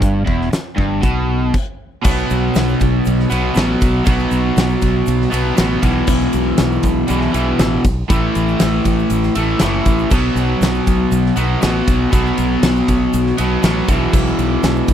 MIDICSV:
0, 0, Header, 1, 5, 480
1, 0, Start_track
1, 0, Tempo, 503778
1, 15, Time_signature, 4, 2, 24, 8
1, 14230, End_track
2, 0, Start_track
2, 0, Title_t, "Overdriven electric guitar"
2, 0, Program_c, 0, 29
2, 0, Note_on_c, 0, 43, 94
2, 237, Note_off_c, 0, 43, 0
2, 241, Note_on_c, 0, 40, 94
2, 478, Note_off_c, 0, 40, 0
2, 723, Note_on_c, 0, 43, 85
2, 963, Note_on_c, 0, 47, 95
2, 966, Note_off_c, 0, 43, 0
2, 1449, Note_off_c, 0, 47, 0
2, 1932, Note_on_c, 0, 47, 87
2, 1943, Note_on_c, 0, 54, 88
2, 1957, Note_on_c, 0, 59, 112
2, 3135, Note_off_c, 0, 54, 0
2, 3137, Note_off_c, 0, 59, 0
2, 3141, Note_on_c, 0, 59, 94
2, 3160, Note_on_c, 0, 54, 74
2, 3162, Note_off_c, 0, 47, 0
2, 3165, Note_on_c, 0, 47, 70
2, 3379, Note_off_c, 0, 47, 0
2, 3382, Note_off_c, 0, 54, 0
2, 3383, Note_on_c, 0, 47, 75
2, 3397, Note_on_c, 0, 54, 79
2, 3406, Note_off_c, 0, 59, 0
2, 3410, Note_on_c, 0, 59, 79
2, 3852, Note_off_c, 0, 47, 0
2, 3855, Note_on_c, 0, 47, 88
2, 3858, Note_off_c, 0, 54, 0
2, 3869, Note_on_c, 0, 54, 97
2, 3882, Note_off_c, 0, 59, 0
2, 3885, Note_on_c, 0, 59, 99
2, 5049, Note_off_c, 0, 59, 0
2, 5051, Note_off_c, 0, 47, 0
2, 5058, Note_off_c, 0, 54, 0
2, 5061, Note_on_c, 0, 59, 92
2, 5073, Note_on_c, 0, 54, 83
2, 5086, Note_on_c, 0, 47, 75
2, 5285, Note_off_c, 0, 47, 0
2, 5293, Note_off_c, 0, 59, 0
2, 5297, Note_on_c, 0, 47, 73
2, 5300, Note_off_c, 0, 54, 0
2, 5309, Note_on_c, 0, 54, 80
2, 5324, Note_on_c, 0, 59, 89
2, 5531, Note_off_c, 0, 47, 0
2, 5531, Note_on_c, 0, 40, 88
2, 5538, Note_off_c, 0, 54, 0
2, 5545, Note_off_c, 0, 59, 0
2, 5549, Note_on_c, 0, 47, 98
2, 5563, Note_on_c, 0, 52, 96
2, 6728, Note_off_c, 0, 40, 0
2, 6738, Note_off_c, 0, 47, 0
2, 6742, Note_on_c, 0, 40, 83
2, 6757, Note_on_c, 0, 47, 74
2, 6767, Note_off_c, 0, 52, 0
2, 6771, Note_on_c, 0, 52, 80
2, 6969, Note_off_c, 0, 52, 0
2, 6974, Note_off_c, 0, 40, 0
2, 6981, Note_on_c, 0, 52, 91
2, 6982, Note_off_c, 0, 47, 0
2, 6998, Note_on_c, 0, 47, 75
2, 7011, Note_on_c, 0, 40, 70
2, 7453, Note_off_c, 0, 52, 0
2, 7461, Note_off_c, 0, 47, 0
2, 7468, Note_off_c, 0, 40, 0
2, 7708, Note_on_c, 0, 45, 81
2, 7725, Note_on_c, 0, 52, 104
2, 7733, Note_on_c, 0, 57, 102
2, 8895, Note_off_c, 0, 45, 0
2, 8901, Note_off_c, 0, 57, 0
2, 8904, Note_off_c, 0, 52, 0
2, 8913, Note_on_c, 0, 57, 79
2, 8932, Note_on_c, 0, 52, 86
2, 8939, Note_on_c, 0, 45, 73
2, 9138, Note_off_c, 0, 57, 0
2, 9143, Note_off_c, 0, 45, 0
2, 9148, Note_off_c, 0, 52, 0
2, 9154, Note_on_c, 0, 45, 77
2, 9165, Note_on_c, 0, 52, 79
2, 9181, Note_on_c, 0, 57, 88
2, 9618, Note_off_c, 0, 45, 0
2, 9623, Note_off_c, 0, 52, 0
2, 9626, Note_on_c, 0, 47, 83
2, 9631, Note_off_c, 0, 57, 0
2, 9641, Note_on_c, 0, 54, 90
2, 9657, Note_on_c, 0, 59, 96
2, 10817, Note_off_c, 0, 59, 0
2, 10818, Note_off_c, 0, 54, 0
2, 10821, Note_on_c, 0, 59, 84
2, 10837, Note_on_c, 0, 54, 80
2, 10843, Note_off_c, 0, 47, 0
2, 10847, Note_on_c, 0, 47, 68
2, 11055, Note_off_c, 0, 47, 0
2, 11057, Note_off_c, 0, 54, 0
2, 11058, Note_on_c, 0, 47, 74
2, 11079, Note_on_c, 0, 54, 76
2, 11089, Note_off_c, 0, 59, 0
2, 11093, Note_on_c, 0, 59, 81
2, 11537, Note_off_c, 0, 54, 0
2, 11538, Note_off_c, 0, 47, 0
2, 11542, Note_on_c, 0, 47, 86
2, 11552, Note_on_c, 0, 54, 93
2, 11566, Note_off_c, 0, 59, 0
2, 11570, Note_on_c, 0, 59, 102
2, 12724, Note_off_c, 0, 47, 0
2, 12729, Note_off_c, 0, 54, 0
2, 12730, Note_off_c, 0, 59, 0
2, 12741, Note_on_c, 0, 59, 82
2, 12751, Note_on_c, 0, 54, 78
2, 12769, Note_on_c, 0, 47, 73
2, 12965, Note_off_c, 0, 59, 0
2, 12970, Note_off_c, 0, 54, 0
2, 12971, Note_off_c, 0, 47, 0
2, 12982, Note_on_c, 0, 47, 84
2, 12997, Note_on_c, 0, 54, 88
2, 13010, Note_on_c, 0, 59, 84
2, 13205, Note_off_c, 0, 47, 0
2, 13212, Note_off_c, 0, 54, 0
2, 13218, Note_off_c, 0, 59, 0
2, 13224, Note_on_c, 0, 40, 91
2, 13237, Note_on_c, 0, 47, 97
2, 13254, Note_on_c, 0, 52, 103
2, 14230, Note_off_c, 0, 40, 0
2, 14230, Note_off_c, 0, 47, 0
2, 14230, Note_off_c, 0, 52, 0
2, 14230, End_track
3, 0, Start_track
3, 0, Title_t, "Fingered electric bass"
3, 0, Program_c, 1, 33
3, 0, Note_on_c, 1, 31, 81
3, 226, Note_off_c, 1, 31, 0
3, 263, Note_on_c, 1, 28, 89
3, 485, Note_off_c, 1, 28, 0
3, 745, Note_on_c, 1, 31, 87
3, 968, Note_off_c, 1, 31, 0
3, 988, Note_on_c, 1, 35, 97
3, 1434, Note_off_c, 1, 35, 0
3, 1952, Note_on_c, 1, 35, 89
3, 2122, Note_off_c, 1, 35, 0
3, 2201, Note_on_c, 1, 35, 94
3, 2368, Note_off_c, 1, 35, 0
3, 2435, Note_on_c, 1, 35, 94
3, 2605, Note_off_c, 1, 35, 0
3, 2680, Note_on_c, 1, 35, 88
3, 2848, Note_off_c, 1, 35, 0
3, 2925, Note_on_c, 1, 35, 107
3, 3091, Note_off_c, 1, 35, 0
3, 3157, Note_on_c, 1, 35, 84
3, 3327, Note_off_c, 1, 35, 0
3, 3395, Note_on_c, 1, 33, 104
3, 3565, Note_off_c, 1, 33, 0
3, 3638, Note_on_c, 1, 35, 86
3, 3807, Note_off_c, 1, 35, 0
3, 3878, Note_on_c, 1, 35, 90
3, 4048, Note_off_c, 1, 35, 0
3, 4110, Note_on_c, 1, 35, 92
3, 4283, Note_off_c, 1, 35, 0
3, 4354, Note_on_c, 1, 35, 96
3, 4525, Note_off_c, 1, 35, 0
3, 4598, Note_on_c, 1, 35, 79
3, 4768, Note_off_c, 1, 35, 0
3, 4837, Note_on_c, 1, 35, 101
3, 5007, Note_off_c, 1, 35, 0
3, 5073, Note_on_c, 1, 35, 86
3, 5245, Note_off_c, 1, 35, 0
3, 5321, Note_on_c, 1, 33, 96
3, 5490, Note_off_c, 1, 33, 0
3, 5556, Note_on_c, 1, 35, 88
3, 5727, Note_off_c, 1, 35, 0
3, 5797, Note_on_c, 1, 35, 94
3, 5967, Note_off_c, 1, 35, 0
3, 6042, Note_on_c, 1, 35, 89
3, 6210, Note_off_c, 1, 35, 0
3, 6284, Note_on_c, 1, 35, 94
3, 6452, Note_off_c, 1, 35, 0
3, 6516, Note_on_c, 1, 35, 82
3, 6687, Note_off_c, 1, 35, 0
3, 6764, Note_on_c, 1, 35, 93
3, 6932, Note_off_c, 1, 35, 0
3, 6995, Note_on_c, 1, 35, 84
3, 7166, Note_off_c, 1, 35, 0
3, 7237, Note_on_c, 1, 33, 100
3, 7407, Note_off_c, 1, 33, 0
3, 7474, Note_on_c, 1, 35, 83
3, 7645, Note_off_c, 1, 35, 0
3, 7721, Note_on_c, 1, 33, 98
3, 7889, Note_off_c, 1, 33, 0
3, 7968, Note_on_c, 1, 33, 91
3, 8133, Note_off_c, 1, 33, 0
3, 8209, Note_on_c, 1, 33, 98
3, 8374, Note_off_c, 1, 33, 0
3, 8440, Note_on_c, 1, 33, 78
3, 8608, Note_off_c, 1, 33, 0
3, 8677, Note_on_c, 1, 33, 103
3, 8846, Note_off_c, 1, 33, 0
3, 8921, Note_on_c, 1, 33, 91
3, 9088, Note_off_c, 1, 33, 0
3, 9161, Note_on_c, 1, 30, 106
3, 9328, Note_off_c, 1, 30, 0
3, 9394, Note_on_c, 1, 33, 85
3, 9564, Note_off_c, 1, 33, 0
3, 9635, Note_on_c, 1, 35, 94
3, 9804, Note_off_c, 1, 35, 0
3, 9865, Note_on_c, 1, 35, 94
3, 10038, Note_off_c, 1, 35, 0
3, 10107, Note_on_c, 1, 35, 84
3, 10278, Note_off_c, 1, 35, 0
3, 10359, Note_on_c, 1, 35, 82
3, 10526, Note_off_c, 1, 35, 0
3, 10594, Note_on_c, 1, 35, 98
3, 10762, Note_off_c, 1, 35, 0
3, 10832, Note_on_c, 1, 35, 92
3, 11001, Note_off_c, 1, 35, 0
3, 11081, Note_on_c, 1, 33, 109
3, 11246, Note_off_c, 1, 33, 0
3, 11315, Note_on_c, 1, 35, 94
3, 11482, Note_off_c, 1, 35, 0
3, 11557, Note_on_c, 1, 35, 100
3, 11723, Note_off_c, 1, 35, 0
3, 11799, Note_on_c, 1, 35, 89
3, 11964, Note_off_c, 1, 35, 0
3, 12031, Note_on_c, 1, 35, 90
3, 12198, Note_off_c, 1, 35, 0
3, 12280, Note_on_c, 1, 35, 82
3, 12444, Note_off_c, 1, 35, 0
3, 12520, Note_on_c, 1, 35, 107
3, 12683, Note_off_c, 1, 35, 0
3, 12759, Note_on_c, 1, 35, 95
3, 12922, Note_off_c, 1, 35, 0
3, 12993, Note_on_c, 1, 33, 105
3, 13158, Note_off_c, 1, 33, 0
3, 13230, Note_on_c, 1, 35, 81
3, 13395, Note_off_c, 1, 35, 0
3, 13468, Note_on_c, 1, 35, 99
3, 13634, Note_off_c, 1, 35, 0
3, 13709, Note_on_c, 1, 35, 97
3, 13874, Note_off_c, 1, 35, 0
3, 13941, Note_on_c, 1, 35, 87
3, 14108, Note_off_c, 1, 35, 0
3, 14182, Note_on_c, 1, 35, 83
3, 14230, Note_off_c, 1, 35, 0
3, 14230, End_track
4, 0, Start_track
4, 0, Title_t, "Muted overdriven electric guitar strokes"
4, 489, Note_on_c, 9, 29, 53
4, 584, Note_off_c, 9, 29, 0
4, 14230, End_track
5, 0, Start_track
5, 0, Title_t, "Drums"
5, 18, Note_on_c, 9, 36, 101
5, 24, Note_on_c, 9, 42, 59
5, 114, Note_off_c, 9, 36, 0
5, 119, Note_off_c, 9, 42, 0
5, 260, Note_on_c, 9, 36, 87
5, 355, Note_off_c, 9, 36, 0
5, 393, Note_on_c, 9, 38, 28
5, 488, Note_off_c, 9, 38, 0
5, 503, Note_on_c, 9, 42, 68
5, 507, Note_on_c, 9, 38, 107
5, 598, Note_off_c, 9, 42, 0
5, 602, Note_off_c, 9, 38, 0
5, 744, Note_on_c, 9, 36, 91
5, 839, Note_off_c, 9, 36, 0
5, 978, Note_on_c, 9, 42, 55
5, 985, Note_on_c, 9, 36, 94
5, 1073, Note_off_c, 9, 42, 0
5, 1080, Note_off_c, 9, 36, 0
5, 1464, Note_on_c, 9, 49, 78
5, 1469, Note_on_c, 9, 36, 93
5, 1560, Note_off_c, 9, 49, 0
5, 1564, Note_off_c, 9, 36, 0
5, 1947, Note_on_c, 9, 49, 112
5, 1953, Note_on_c, 9, 36, 107
5, 1955, Note_on_c, 9, 82, 97
5, 2042, Note_off_c, 9, 49, 0
5, 2048, Note_off_c, 9, 36, 0
5, 2050, Note_off_c, 9, 82, 0
5, 2080, Note_on_c, 9, 82, 28
5, 2176, Note_off_c, 9, 82, 0
5, 2192, Note_on_c, 9, 82, 76
5, 2200, Note_on_c, 9, 51, 61
5, 2287, Note_off_c, 9, 82, 0
5, 2295, Note_off_c, 9, 51, 0
5, 2426, Note_on_c, 9, 82, 97
5, 2437, Note_on_c, 9, 51, 99
5, 2441, Note_on_c, 9, 38, 116
5, 2521, Note_off_c, 9, 82, 0
5, 2533, Note_off_c, 9, 51, 0
5, 2537, Note_off_c, 9, 38, 0
5, 2552, Note_on_c, 9, 82, 28
5, 2647, Note_off_c, 9, 82, 0
5, 2670, Note_on_c, 9, 82, 68
5, 2678, Note_on_c, 9, 36, 82
5, 2680, Note_on_c, 9, 51, 67
5, 2765, Note_off_c, 9, 82, 0
5, 2773, Note_off_c, 9, 36, 0
5, 2775, Note_off_c, 9, 51, 0
5, 2907, Note_on_c, 9, 82, 83
5, 2923, Note_on_c, 9, 51, 93
5, 3002, Note_off_c, 9, 82, 0
5, 3018, Note_off_c, 9, 51, 0
5, 3045, Note_on_c, 9, 38, 32
5, 3141, Note_off_c, 9, 38, 0
5, 3148, Note_on_c, 9, 82, 68
5, 3161, Note_on_c, 9, 51, 73
5, 3243, Note_off_c, 9, 82, 0
5, 3257, Note_off_c, 9, 51, 0
5, 3383, Note_on_c, 9, 82, 83
5, 3402, Note_on_c, 9, 51, 91
5, 3406, Note_on_c, 9, 38, 118
5, 3478, Note_off_c, 9, 82, 0
5, 3497, Note_off_c, 9, 51, 0
5, 3501, Note_off_c, 9, 38, 0
5, 3631, Note_on_c, 9, 82, 68
5, 3638, Note_on_c, 9, 36, 94
5, 3638, Note_on_c, 9, 51, 82
5, 3726, Note_off_c, 9, 82, 0
5, 3733, Note_off_c, 9, 51, 0
5, 3734, Note_off_c, 9, 36, 0
5, 3866, Note_on_c, 9, 82, 74
5, 3872, Note_on_c, 9, 51, 106
5, 3876, Note_on_c, 9, 36, 114
5, 3962, Note_off_c, 9, 82, 0
5, 3967, Note_off_c, 9, 51, 0
5, 3972, Note_off_c, 9, 36, 0
5, 3992, Note_on_c, 9, 82, 27
5, 4087, Note_off_c, 9, 82, 0
5, 4107, Note_on_c, 9, 82, 61
5, 4120, Note_on_c, 9, 51, 69
5, 4202, Note_off_c, 9, 82, 0
5, 4215, Note_off_c, 9, 51, 0
5, 4354, Note_on_c, 9, 82, 75
5, 4360, Note_on_c, 9, 51, 110
5, 4364, Note_on_c, 9, 38, 118
5, 4449, Note_off_c, 9, 82, 0
5, 4456, Note_off_c, 9, 51, 0
5, 4459, Note_off_c, 9, 38, 0
5, 4477, Note_on_c, 9, 82, 24
5, 4573, Note_off_c, 9, 82, 0
5, 4587, Note_on_c, 9, 82, 64
5, 4594, Note_on_c, 9, 51, 66
5, 4596, Note_on_c, 9, 36, 79
5, 4682, Note_off_c, 9, 82, 0
5, 4689, Note_off_c, 9, 51, 0
5, 4691, Note_off_c, 9, 36, 0
5, 4826, Note_on_c, 9, 82, 83
5, 4838, Note_on_c, 9, 51, 103
5, 4921, Note_off_c, 9, 82, 0
5, 4933, Note_off_c, 9, 51, 0
5, 4969, Note_on_c, 9, 38, 32
5, 5064, Note_off_c, 9, 38, 0
5, 5068, Note_on_c, 9, 82, 66
5, 5084, Note_on_c, 9, 51, 82
5, 5163, Note_off_c, 9, 82, 0
5, 5179, Note_off_c, 9, 51, 0
5, 5312, Note_on_c, 9, 82, 95
5, 5314, Note_on_c, 9, 51, 103
5, 5318, Note_on_c, 9, 38, 116
5, 5407, Note_off_c, 9, 82, 0
5, 5409, Note_off_c, 9, 51, 0
5, 5413, Note_off_c, 9, 38, 0
5, 5553, Note_on_c, 9, 36, 83
5, 5553, Note_on_c, 9, 82, 82
5, 5554, Note_on_c, 9, 51, 76
5, 5648, Note_off_c, 9, 36, 0
5, 5649, Note_off_c, 9, 51, 0
5, 5649, Note_off_c, 9, 82, 0
5, 5783, Note_on_c, 9, 49, 101
5, 5791, Note_on_c, 9, 36, 109
5, 5795, Note_on_c, 9, 82, 88
5, 5878, Note_off_c, 9, 49, 0
5, 5886, Note_off_c, 9, 36, 0
5, 5891, Note_off_c, 9, 82, 0
5, 5920, Note_on_c, 9, 82, 29
5, 6016, Note_off_c, 9, 82, 0
5, 6029, Note_on_c, 9, 51, 68
5, 6032, Note_on_c, 9, 82, 73
5, 6124, Note_off_c, 9, 51, 0
5, 6128, Note_off_c, 9, 82, 0
5, 6265, Note_on_c, 9, 51, 96
5, 6269, Note_on_c, 9, 38, 117
5, 6274, Note_on_c, 9, 82, 81
5, 6360, Note_off_c, 9, 51, 0
5, 6364, Note_off_c, 9, 38, 0
5, 6369, Note_off_c, 9, 82, 0
5, 6402, Note_on_c, 9, 82, 31
5, 6498, Note_off_c, 9, 82, 0
5, 6505, Note_on_c, 9, 51, 65
5, 6512, Note_on_c, 9, 36, 78
5, 6523, Note_on_c, 9, 82, 76
5, 6600, Note_off_c, 9, 51, 0
5, 6608, Note_off_c, 9, 36, 0
5, 6618, Note_off_c, 9, 82, 0
5, 6743, Note_on_c, 9, 51, 92
5, 6759, Note_on_c, 9, 82, 95
5, 6839, Note_off_c, 9, 51, 0
5, 6854, Note_off_c, 9, 82, 0
5, 6870, Note_on_c, 9, 38, 30
5, 6965, Note_off_c, 9, 38, 0
5, 6995, Note_on_c, 9, 51, 71
5, 7005, Note_on_c, 9, 82, 75
5, 7091, Note_off_c, 9, 51, 0
5, 7100, Note_off_c, 9, 82, 0
5, 7232, Note_on_c, 9, 51, 93
5, 7236, Note_on_c, 9, 38, 109
5, 7241, Note_on_c, 9, 82, 97
5, 7328, Note_off_c, 9, 51, 0
5, 7332, Note_off_c, 9, 38, 0
5, 7336, Note_off_c, 9, 82, 0
5, 7474, Note_on_c, 9, 51, 73
5, 7476, Note_on_c, 9, 36, 91
5, 7479, Note_on_c, 9, 82, 79
5, 7569, Note_off_c, 9, 51, 0
5, 7571, Note_off_c, 9, 36, 0
5, 7574, Note_off_c, 9, 82, 0
5, 7717, Note_on_c, 9, 51, 98
5, 7718, Note_on_c, 9, 36, 118
5, 7723, Note_on_c, 9, 82, 94
5, 7813, Note_off_c, 9, 36, 0
5, 7813, Note_off_c, 9, 51, 0
5, 7818, Note_off_c, 9, 82, 0
5, 7958, Note_on_c, 9, 51, 67
5, 7963, Note_on_c, 9, 82, 81
5, 8053, Note_off_c, 9, 51, 0
5, 8058, Note_off_c, 9, 82, 0
5, 8082, Note_on_c, 9, 82, 27
5, 8178, Note_off_c, 9, 82, 0
5, 8190, Note_on_c, 9, 51, 110
5, 8194, Note_on_c, 9, 38, 116
5, 8198, Note_on_c, 9, 82, 93
5, 8285, Note_off_c, 9, 51, 0
5, 8289, Note_off_c, 9, 38, 0
5, 8294, Note_off_c, 9, 82, 0
5, 8433, Note_on_c, 9, 51, 68
5, 8436, Note_on_c, 9, 36, 77
5, 8439, Note_on_c, 9, 82, 73
5, 8528, Note_off_c, 9, 51, 0
5, 8532, Note_off_c, 9, 36, 0
5, 8535, Note_off_c, 9, 82, 0
5, 8564, Note_on_c, 9, 82, 31
5, 8659, Note_off_c, 9, 82, 0
5, 8668, Note_on_c, 9, 51, 95
5, 8677, Note_on_c, 9, 82, 101
5, 8764, Note_off_c, 9, 51, 0
5, 8773, Note_off_c, 9, 82, 0
5, 8794, Note_on_c, 9, 38, 30
5, 8801, Note_on_c, 9, 82, 28
5, 8889, Note_off_c, 9, 38, 0
5, 8896, Note_off_c, 9, 82, 0
5, 8911, Note_on_c, 9, 51, 83
5, 8918, Note_on_c, 9, 82, 75
5, 9007, Note_off_c, 9, 51, 0
5, 9013, Note_off_c, 9, 82, 0
5, 9140, Note_on_c, 9, 51, 104
5, 9144, Note_on_c, 9, 38, 108
5, 9157, Note_on_c, 9, 82, 110
5, 9235, Note_off_c, 9, 51, 0
5, 9239, Note_off_c, 9, 38, 0
5, 9253, Note_off_c, 9, 82, 0
5, 9390, Note_on_c, 9, 51, 75
5, 9395, Note_on_c, 9, 36, 96
5, 9399, Note_on_c, 9, 82, 76
5, 9485, Note_off_c, 9, 51, 0
5, 9491, Note_off_c, 9, 36, 0
5, 9495, Note_off_c, 9, 82, 0
5, 9517, Note_on_c, 9, 82, 33
5, 9612, Note_off_c, 9, 82, 0
5, 9632, Note_on_c, 9, 82, 103
5, 9635, Note_on_c, 9, 57, 94
5, 9637, Note_on_c, 9, 36, 111
5, 9727, Note_off_c, 9, 82, 0
5, 9730, Note_off_c, 9, 57, 0
5, 9732, Note_off_c, 9, 36, 0
5, 9874, Note_on_c, 9, 82, 75
5, 9883, Note_on_c, 9, 51, 67
5, 9969, Note_off_c, 9, 82, 0
5, 9978, Note_off_c, 9, 51, 0
5, 10117, Note_on_c, 9, 82, 101
5, 10124, Note_on_c, 9, 51, 96
5, 10128, Note_on_c, 9, 38, 125
5, 10213, Note_off_c, 9, 82, 0
5, 10219, Note_off_c, 9, 51, 0
5, 10223, Note_off_c, 9, 38, 0
5, 10236, Note_on_c, 9, 82, 31
5, 10331, Note_off_c, 9, 82, 0
5, 10356, Note_on_c, 9, 82, 82
5, 10359, Note_on_c, 9, 36, 80
5, 10362, Note_on_c, 9, 51, 67
5, 10452, Note_off_c, 9, 82, 0
5, 10455, Note_off_c, 9, 36, 0
5, 10458, Note_off_c, 9, 51, 0
5, 10593, Note_on_c, 9, 82, 95
5, 10594, Note_on_c, 9, 51, 91
5, 10688, Note_off_c, 9, 82, 0
5, 10690, Note_off_c, 9, 51, 0
5, 10728, Note_on_c, 9, 38, 33
5, 10824, Note_off_c, 9, 38, 0
5, 10828, Note_on_c, 9, 82, 83
5, 10831, Note_on_c, 9, 51, 72
5, 10924, Note_off_c, 9, 82, 0
5, 10927, Note_off_c, 9, 51, 0
5, 11074, Note_on_c, 9, 82, 97
5, 11076, Note_on_c, 9, 51, 97
5, 11080, Note_on_c, 9, 38, 115
5, 11169, Note_off_c, 9, 82, 0
5, 11172, Note_off_c, 9, 51, 0
5, 11175, Note_off_c, 9, 38, 0
5, 11316, Note_on_c, 9, 36, 89
5, 11316, Note_on_c, 9, 51, 70
5, 11320, Note_on_c, 9, 82, 77
5, 11411, Note_off_c, 9, 51, 0
5, 11412, Note_off_c, 9, 36, 0
5, 11415, Note_off_c, 9, 82, 0
5, 11555, Note_on_c, 9, 51, 99
5, 11556, Note_on_c, 9, 36, 108
5, 11556, Note_on_c, 9, 82, 96
5, 11650, Note_off_c, 9, 51, 0
5, 11651, Note_off_c, 9, 36, 0
5, 11651, Note_off_c, 9, 82, 0
5, 11684, Note_on_c, 9, 82, 31
5, 11779, Note_off_c, 9, 82, 0
5, 11791, Note_on_c, 9, 51, 69
5, 11800, Note_on_c, 9, 82, 73
5, 11887, Note_off_c, 9, 51, 0
5, 11895, Note_off_c, 9, 82, 0
5, 12031, Note_on_c, 9, 51, 102
5, 12035, Note_on_c, 9, 38, 119
5, 12037, Note_on_c, 9, 82, 89
5, 12127, Note_off_c, 9, 51, 0
5, 12131, Note_off_c, 9, 38, 0
5, 12132, Note_off_c, 9, 82, 0
5, 12163, Note_on_c, 9, 82, 31
5, 12258, Note_off_c, 9, 82, 0
5, 12275, Note_on_c, 9, 36, 77
5, 12277, Note_on_c, 9, 51, 66
5, 12278, Note_on_c, 9, 82, 72
5, 12370, Note_off_c, 9, 36, 0
5, 12373, Note_off_c, 9, 51, 0
5, 12373, Note_off_c, 9, 82, 0
5, 12514, Note_on_c, 9, 51, 97
5, 12516, Note_on_c, 9, 82, 102
5, 12610, Note_off_c, 9, 51, 0
5, 12612, Note_off_c, 9, 82, 0
5, 12639, Note_on_c, 9, 38, 31
5, 12735, Note_off_c, 9, 38, 0
5, 12750, Note_on_c, 9, 51, 80
5, 12758, Note_on_c, 9, 82, 78
5, 12845, Note_off_c, 9, 51, 0
5, 12854, Note_off_c, 9, 82, 0
5, 12989, Note_on_c, 9, 82, 97
5, 12991, Note_on_c, 9, 51, 109
5, 12995, Note_on_c, 9, 38, 118
5, 13084, Note_off_c, 9, 82, 0
5, 13087, Note_off_c, 9, 51, 0
5, 13090, Note_off_c, 9, 38, 0
5, 13229, Note_on_c, 9, 36, 91
5, 13229, Note_on_c, 9, 51, 83
5, 13231, Note_on_c, 9, 82, 79
5, 13324, Note_off_c, 9, 36, 0
5, 13324, Note_off_c, 9, 51, 0
5, 13326, Note_off_c, 9, 82, 0
5, 13467, Note_on_c, 9, 36, 112
5, 13469, Note_on_c, 9, 57, 101
5, 13469, Note_on_c, 9, 82, 91
5, 13562, Note_off_c, 9, 36, 0
5, 13564, Note_off_c, 9, 57, 0
5, 13564, Note_off_c, 9, 82, 0
5, 13595, Note_on_c, 9, 82, 33
5, 13690, Note_off_c, 9, 82, 0
5, 13708, Note_on_c, 9, 51, 65
5, 13713, Note_on_c, 9, 82, 77
5, 13804, Note_off_c, 9, 51, 0
5, 13808, Note_off_c, 9, 82, 0
5, 13942, Note_on_c, 9, 82, 85
5, 13945, Note_on_c, 9, 51, 106
5, 13949, Note_on_c, 9, 38, 122
5, 14037, Note_off_c, 9, 82, 0
5, 14040, Note_off_c, 9, 51, 0
5, 14044, Note_off_c, 9, 38, 0
5, 14062, Note_on_c, 9, 82, 29
5, 14158, Note_off_c, 9, 82, 0
5, 14179, Note_on_c, 9, 82, 76
5, 14180, Note_on_c, 9, 36, 86
5, 14181, Note_on_c, 9, 51, 72
5, 14230, Note_off_c, 9, 36, 0
5, 14230, Note_off_c, 9, 51, 0
5, 14230, Note_off_c, 9, 82, 0
5, 14230, End_track
0, 0, End_of_file